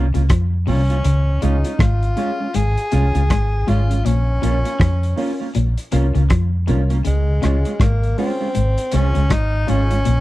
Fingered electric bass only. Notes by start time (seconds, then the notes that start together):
Already playing: C2
0.15 C#2
0.30 F2
0.68 C2
1.05 C#2
1.43 C#2
1.80 G#1
2.56 G#1
2.93 C2
3.15 C#2
3.31 G#1
3.69 G#1
4.06 A#1
4.43 A#1
4.81 F2
5.56 A#1
5.93 C2
6.16 C#2
6.31 F2
6.69 C2
7.07 C#2
7.44 C#2
7.81 G#1
8.57 G#1
8.94 C2
9.17 C#2
9.31 G#1
9.70 G#1
10.07 A#1